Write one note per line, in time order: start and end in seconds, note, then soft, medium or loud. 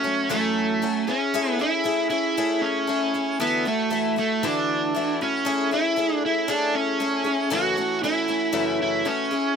0.00 0.32 C#4 medium
0.00 0.30 F#4 medium
0.04 0.29 F#3 soft
0.04 0.29 A3 soft
0.04 0.30 C#4 medium
0.30 0.81 F#2 medium
0.30 0.85 E3 medium
0.30 0.81 F#3 medium
0.30 1.10 A3 medium
0.30 0.82 A3 medium
0.30 0.82 C#4 medium
0.30 0.82 F#4 medium
0.82 1.08 F#3 medium
0.82 1.08 A3 medium
0.82 1.07 C#4 medium
0.82 1.07 F#4 medium
1.07 1.51 C#4 medium
1.07 1.33 C#4 soft
1.07 1.33 E4 soft
1.07 1.33 G#4 soft
1.34 1.59 A3 medium
1.34 1.59 C#4 medium
1.34 1.58 E4 medium
1.34 1.58 G#4 medium
1.51 1.61 B3 medium
1.59 1.84 C#4 soft
1.59 1.84 E4 soft
1.59 2.09 E4 loud
1.59 1.84 G#4 soft
1.84 2.10 A3 medium
1.84 2.11 C#4 medium
1.84 2.10 E4 medium
1.84 2.09 G#4 medium
2.10 2.37 C#4 soft
2.10 2.63 E4 medium
2.10 2.36 E4 soft
2.10 2.36 G#4 soft
2.37 2.87 A3 medium
2.37 2.87 C#4 medium
2.37 2.89 E4 medium
2.37 2.88 G#4 medium
2.62 3.41 C#4 medium
2.87 3.13 A3 medium
2.87 3.14 C#4 medium
2.87 3.14 E4 medium
2.87 3.13 G#4 medium
3.14 3.40 C#4 soft
3.14 3.40 E4 soft
3.14 3.40 G#4 soft
3.40 3.65 D3 medium
3.40 3.65 E3 medium
3.40 3.66 A3 medium
3.40 3.64 B3 medium
3.40 3.65 E4 medium
3.40 3.64 F#4 medium
3.65 3.89 A3 soft
3.65 4.14 A3 medium
3.65 3.90 E4 medium
3.65 3.91 F#4 medium
3.90 4.16 E3 medium
3.90 4.17 A3 medium
3.90 4.17 E4 medium
3.90 4.15 F#4 medium
4.16 4.42 A3 soft
4.16 4.44 A3 medium
4.16 4.42 E4 soft
4.16 4.42 F#4 soft
4.43 4.94 D3 medium
4.43 4.94 E3 medium
4.43 4.95 A3 medium
4.43 5.22 D4 medium
4.43 4.96 E4 medium
4.43 4.95 F#4 medium
4.95 5.20 E3 medium
4.95 5.21 A3 medium
4.95 5.20 E4 medium
4.95 5.20 F#4 medium
5.21 5.44 A3 soft
5.21 5.69 C#4 medium
5.21 5.45 E4 soft
5.21 5.46 F#4 soft
5.45 5.71 A3 medium
5.45 5.72 C#4 medium
5.45 5.71 E4 medium
5.45 5.70 G#4 medium
5.71 5.96 C#4 soft
5.71 5.97 E4 soft
5.71 6.24 E4 medium
5.71 5.97 G#4 soft
5.96 6.47 A3 medium
5.96 6.48 C#4 medium
5.96 6.49 E4 medium
5.96 6.48 G#4 medium
6.26 6.48 E4 medium
6.48 6.99 A3 medium
6.48 7.00 C#4 medium
6.48 6.75 D4 loud
6.48 7.01 E4 medium
6.48 7.01 G#4 medium
6.75 7.55 C#4 loud
7.00 7.26 A3 medium
7.00 7.25 C#4 medium
7.00 7.25 E4 medium
7.00 7.23 G#4 medium
7.24 7.51 C#4 soft
7.24 7.51 E4 soft
7.24 7.51 G#4 soft
7.50 7.77 F#2 medium
7.50 7.77 C#3 medium
7.50 7.77 E3 medium
7.50 7.77 A3 medium
7.50 7.77 C#4 medium
7.50 7.76 F#4 medium
7.50 8.03 F#4 loud
7.77 8.02 E3 soft
7.77 8.03 A3 medium
7.77 8.03 C#4 medium
7.77 8.03 F#4 medium
8.04 8.29 E3 medium
8.04 8.28 A3 medium
8.04 8.27 C#4 medium
8.04 8.81 E4 loud
8.04 8.27 F#4 medium
8.28 8.52 E3 soft
8.28 8.52 A3 soft
8.28 8.52 C#4 soft
8.28 8.52 F#4 medium
8.52 9.05 F#2 medium
8.52 9.06 C#3 medium
8.52 9.05 E3 medium
8.52 9.05 A3 medium
8.52 9.05 C#4 medium
8.52 9.05 F#4 medium
8.82 9.08 E4 medium
9.05 9.32 E3 medium
9.05 9.32 A3 medium
9.05 9.32 C#4 medium
9.05 9.56 C#4 medium
9.05 9.30 F#4 medium
9.31 9.56 C#4 soft
9.31 9.56 E4 soft
9.31 9.56 G#4 soft